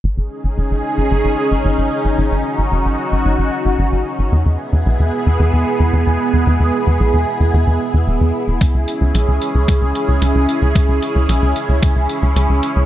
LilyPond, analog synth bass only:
\new Staff \with { instrumentName = "Analog synth bass" } { \clef bass \time 4/4 \key gis \phrygian \tempo 4 = 112 gis,,16 gis,,16 r16 gis,,16 fis,,16 gis,,16 r16 gis,,16 gis,,16 gis,,16 r16 gis,,16 gis,,16 gis,,16 r16 gis,,16 | gis,,16 gis,,16 r16 gis,,16 fis,,16 gis,,16 r16 gis,,16 gis,,16 gis,,16 r16 gis,,16 gis,,16 gis,,16 r16 gis,,16 | e,16 e,16 r16 e,16 b,,16 e,16 r16 e,16 e,16 e,16 r16 e,16 e,16 e,16 r16 e,16 | e,16 e,16 r16 e,16 b,,16 e,16 r16 e,16 e,16 e,16 r16 e,16 e,,16 e,16 r16 e,,16 |
cis,16 cis,16 r16 cis,16 b,,16 cis,16 r16 cis,16 cis,16 cis,16 r16 cis,16 cis,16 cis,16 r16 cis,16 | cis,16 cis,16 r16 cis,16 b,,16 cis,16 r16 cis,16 cis,16 cis,16 r16 cis,16 cis,16 cis,16 r16 cis,16 | }